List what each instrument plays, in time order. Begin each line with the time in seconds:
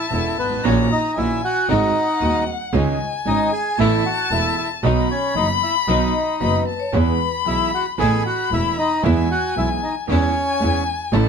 Already playing: bandoneon E5, violin A5
0.10 grand piano E1 E2 E3 B3 C#4 A4, double bass E1, string section B3 C#4 A4, bandoneon E4
0.15 bandoneon E5
0.38 double bass G#1, bandoneon B3 B4
0.44 grand piano G1
0.50 grand piano G#1
0.57 grand piano A1
0.63 double bass A#1, grand piano A#1 A#2 D#3 A#3 C#4 F#4, string section A#3 D#4 F#4, bandoneon C#4 C#5, violin A#5
0.92 bandoneon D#4 D#5
1.16 grand piano A#1 A#2 D#3 A#3 C#4 F#4, double bass A#1, string section A#3 D#4 F#4, bandoneon E4 E5, violin G#5
1.44 bandoneon F#4 F#5
1.68 grand piano G#1 G#2 D#3 G#3 C4 F#4, double bass G#1, string section G#3 C4 F#4, bandoneon D#4 D#5, violin F#5
2.20 grand piano D#1 D#2 D#3 G#3 C4 F#4, double bass D#2, string section G#3 C4 F#4, vibraphone D#5
2.47 vibraphone F#5
2.73 grand piano C#2 C#3 D#3 G#3 C#4 G#4, double bass C#2, string section G#3 C#4 D#4, vibraphone D#5, violin G#5
3.25 grand piano G#1 G#2 D#3 G#3 C#4 G#4, double bass G#1, string section G#3 C#4 D#4, bandoneon D#4 D#5
3.53 bandoneon G#4 G#5
3.78 double bass A1, grand piano A1 A2 E3 A3 B3 A4, string section A3 B3 E4, bandoneon E4 E5, violin A5
4.06 bandoneon F#4 F#5
4.31 double bass E1, grand piano E1 E2 E3 A3 B3 A4, string section A3 B3 E4, bandoneon E4 E5
4.58 bandoneon E4 E5
4.83 double bass B1, grand piano B1 B2 D#3 F#3 B3 F#4, string section F#3 B3 D#4, bandoneon D#4 D#5, violin B5
5.11 bandoneon C#4 C#5
5.35 grand piano F#1 F#2 D#3 F#3 B3 F#4, double bass F#1, string section F#3 B3 D#4, bandoneon D#4 D#5
5.63 bandoneon E4 E5
5.88 double bass B1, grand piano B1 B2 D#3 F#3 B3 F#4, string section F#3 B3 D#4, bandoneon D#4 D#5
6.40 grand piano F#1 F#2 D#3 F#3 B3 F#4, double bass F#1, string section F#3 B3 D#4, vibraphone B4, violin B5
6.68 violin A5
6.80 vibraphone C#5
6.92 grand piano E2 E3 G#3 B3 G#4, double bass E2, string section G#3 B3 E4, vibraphone B4, violin B5
7.45 grand piano B1 B2 E3 G#3 B3 G#4, double bass B1, string section G#3 B3 E4, bandoneon E4 E5
7.74 bandoneon F#4 F#5
7.98 grand piano A1 A2 E3 A3 B3 A4, double bass A1, string section A3 B3 E4, bandoneon G#4 G#5, violin B5
8.26 bandoneon F#4 F#5
8.51 grand piano E1 E2 E3 A3 B3 A4, double bass E1, string section A3 B3 E4, bandoneon E4 E5
8.78 bandoneon D#4 D#5
9.03 grand piano E2 E3 G#3 B3 G#4, double bass E2, string section G#3 B3 E4, bandoneon E4 E5, violin G#5
9.31 bandoneon F#4 F#5
9.56 double bass B1, grand piano B1 B2 E3 G#3 B3 G#4, string section G#3 B3 E4, bandoneon E4 E5
9.83 bandoneon D#4 D#5
10.07 grand piano E2 E3 G#3 C#4 G#4, double bass E2, string section G#3 C#4 E4, bandoneon C#4 C#5, violin G#5
10.60 grand piano E2 E3 G#3 C#4 G#4, double bass E2, string section G#3 C#4 E4
11.12 double bass A1, grand piano A1 A2 E3 A3 C#4 A4, string section A3 C#4 E4, violin A5